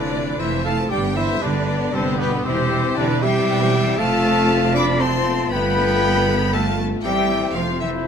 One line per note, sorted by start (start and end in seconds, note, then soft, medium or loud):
0.00 0.33 F1 medium
0.00 0.39 D3 loud
0.00 0.12 E3 medium
0.00 0.13 F3 medium
0.00 0.37 A3 medium
0.00 0.13 C4 medium
0.00 0.38 D4 loud
0.00 0.39 D4 medium
0.00 0.37 E4 medium
0.00 0.10 F4 medium
0.00 0.38 B4 loud
0.00 0.38 D5 loud
0.00 0.39 D5 loud
0.12 0.25 E3 medium
0.12 0.26 A3 medium
0.12 0.26 E4 medium
0.12 0.24 F4 medium
0.25 0.38 E3 medium
0.25 0.39 F3 medium
0.25 0.39 C4 medium
0.25 0.37 F4 medium
0.38 0.85 F1 loud
0.38 0.51 E3 medium
0.38 0.65 E3 loud
0.38 0.89 A3 medium
0.38 0.51 A3 medium
0.38 0.89 E4 medium
0.38 0.64 E4 loud
0.38 0.51 E4 medium
0.38 0.52 E4 loud
0.38 0.49 F4 medium
0.38 0.65 C5 loud
0.38 0.65 E5 loud
0.38 0.66 E5 loud
0.50 0.64 E3 medium
0.50 0.65 F3 medium
0.50 0.64 C4 medium
0.50 0.62 F4 medium
0.63 0.76 E3 medium
0.63 0.78 A3 medium
0.63 0.91 A3 medium
0.63 0.77 E4 medium
0.63 0.75 F4 medium
0.63 0.91 A4 loud
0.63 0.90 A4 loud
0.63 0.76 F5 loud
0.63 0.91 A5 loud
0.63 0.72 A5 medium
0.76 0.91 E3 medium
0.76 0.91 F3 medium
0.76 0.90 C4 medium
0.76 0.90 F4 medium
0.89 1.36 G1 loud
0.89 1.03 G3 medium
0.89 1.17 G3 loud
0.89 1.40 B3 loud
0.89 1.02 D4 medium
0.89 1.40 D4 medium
0.89 1.16 G4 loud
0.89 1.01 D5 loud
0.89 0.97 G5 loud
0.89 1.16 G5 loud
1.02 1.17 D3 medium
1.02 1.16 B3 medium
1.02 1.16 G4 medium
1.15 1.25 E3 medium
1.15 1.29 G3 medium
1.15 1.29 D4 medium
1.15 1.44 E4 loud
1.15 1.41 E4 loud
1.15 1.41 C5 loud
1.15 1.42 E5 loud
1.28 1.42 D3 medium
1.28 1.41 B3 medium
1.28 1.42 B3 medium
1.28 1.41 G4 medium
1.39 1.88 G1 loud
1.39 1.93 D3 loud
1.39 1.54 G3 medium
1.39 2.42 B3 loud
1.39 1.53 D4 medium
1.39 2.42 D4 loud
1.39 1.92 D4 medium
1.39 1.95 D4 medium
1.39 1.93 B4 loud
1.39 1.94 D5 loud
1.39 1.93 D5 loud
1.54 1.67 D3 medium
1.54 1.68 B3 medium
1.54 1.67 G4 medium
1.66 1.80 G3 medium
1.66 1.80 D4 medium
1.78 1.93 D3 medium
1.78 1.93 B3 medium
1.78 1.93 G4 medium
1.91 2.39 G1 loud
1.91 2.19 C3 loud
1.91 2.05 G3 medium
1.91 2.21 C4 loud
1.91 2.17 C4 loud
1.91 2.04 D4 medium
1.91 2.04 A4 loud
1.91 2.19 C5 loud
1.91 2.20 C5 loud
2.05 2.19 D3 medium
2.05 2.19 B3 medium
2.05 2.19 G4 medium
2.17 2.45 B2 loud
2.17 2.31 G3 medium
2.17 2.44 B3 loud
2.17 2.47 B3 loud
2.17 2.31 D4 medium
2.17 2.30 G4 loud
2.17 2.45 B4 loud
2.30 2.44 D3 medium
2.30 2.44 B3 medium
2.30 2.44 G4 medium
2.44 2.90 E1 loud
2.44 2.96 C3 loud
2.44 2.56 E3 medium
2.44 2.56 G3 medium
2.44 2.97 C4 loud
2.44 2.96 C4 loud
2.44 3.98 C4 loud
2.44 2.56 E4 medium
2.44 3.99 E4 loud
2.44 2.95 G4 loud
2.44 2.96 C5 loud
2.56 2.70 C3 medium
2.56 2.69 E3 medium
2.56 2.70 C4 medium
2.56 2.70 G4 medium
2.68 2.82 E3 medium
2.68 2.83 G3 medium
2.68 2.83 E4 medium
2.82 2.97 C3 medium
2.82 2.94 E3 medium
2.82 2.96 C4 medium
2.82 2.96 G4 medium
2.94 3.42 E1 loud
2.94 3.22 D3 loud
2.94 3.08 E3 loud
2.94 3.09 G3 loud
2.94 3.24 D4 loud
2.94 3.08 D4 loud
2.94 3.08 E4 medium
2.94 3.22 B4 loud
2.94 3.22 D5 loud
2.94 3.23 D5 loud
3.08 3.22 C3 medium
3.08 3.21 E3 medium
3.08 3.22 C4 medium
3.08 3.22 G4 medium
3.22 3.35 E3 medium
3.22 3.35 G3 medium
3.22 3.98 G3 loud
3.22 3.35 E4 medium
3.22 3.99 G4 loud
3.22 3.98 G4 loud
3.22 3.99 E5 loud
3.22 3.99 G5 loud
3.22 3.98 G5 loud
3.35 3.48 C3 medium
3.35 3.47 E3 medium
3.35 3.48 C4 medium
3.35 3.48 G4 medium
3.47 3.93 E1 loud
3.47 3.59 E3 medium
3.47 3.60 G3 medium
3.47 3.59 E4 medium
3.59 3.74 C3 medium
3.59 3.71 E3 loud
3.59 3.73 C4 medium
3.59 3.73 G4 medium
3.71 3.85 E3 medium
3.71 3.86 G3 medium
3.71 3.85 E4 medium
3.85 3.99 C3 medium
3.85 3.99 E3 medium
3.85 3.96 C4 medium
3.85 3.99 G4 medium
3.97 5.48 F1 loud
3.97 5.47 F3 loud
3.97 6.99 A3 loud
3.97 4.75 A3 loud
3.97 5.47 C4 loud
3.97 4.99 C4 loud
3.97 4.99 F4 loud
3.97 4.74 A4 loud
3.97 4.73 A4 loud
3.97 4.75 F5 loud
3.97 4.73 A5 loud
3.97 4.74 A5 loud
4.74 5.01 D4 loud
4.74 5.00 D5 loud
4.74 5.02 D5 loud
4.74 5.00 B5 loud
4.74 4.80 D6 loud
4.74 4.83 D6 loud
4.99 5.51 C4 loud
4.99 5.26 C4 loud
4.99 5.51 F4 loud
4.99 5.33 C5 loud
4.99 5.34 C5 loud
4.99 5.52 A5 loud
4.99 5.50 C6 loud
4.99 5.51 C6 loud
5.27 5.52 B3 medium
5.50 7.01 G1 loud
5.50 7.00 D3 loud
5.50 6.37 A3 loud
5.50 6.51 B3 loud
5.50 7.00 B3 loud
5.50 6.37 F4 loud
5.50 6.49 B4 loud
5.50 6.50 B4 loud
5.50 6.51 G5 loud
5.50 6.51 B5 loud
5.50 6.52 B5 loud
6.52 6.78 A3 loud
6.52 7.04 A3 medium
6.52 7.04 F4 medium
6.52 6.65 A4 loud
6.52 6.78 F5 loud
6.52 6.79 A5 loud
7.03 7.54 A1 loud
7.03 8.03 C3 medium
7.03 7.52 E3 medium
7.03 7.51 G3 loud
7.03 8.03 A3 medium
7.03 8.03 C4 medium
7.03 7.54 C4 medium
7.03 7.55 E4 medium
7.03 7.58 G4 loud
7.03 7.52 G4 loud
7.03 7.51 E5 loud
7.03 7.51 G5 loud
7.03 7.52 G5 loud
7.54 8.06 F1 medium
7.54 7.81 F3 medium
7.54 8.08 F3 medium
7.54 8.08 A3 medium
7.54 8.06 F4 medium
7.54 7.83 F4 medium
7.54 7.80 C5 medium
7.54 7.81 F5 loud
7.81 7.89 E3 medium
7.81 8.06 E4 loud
7.81 8.08 E4 loud
7.81 8.07 C5 medium
7.81 8.07 E5 medium
7.81 7.89 E5 loud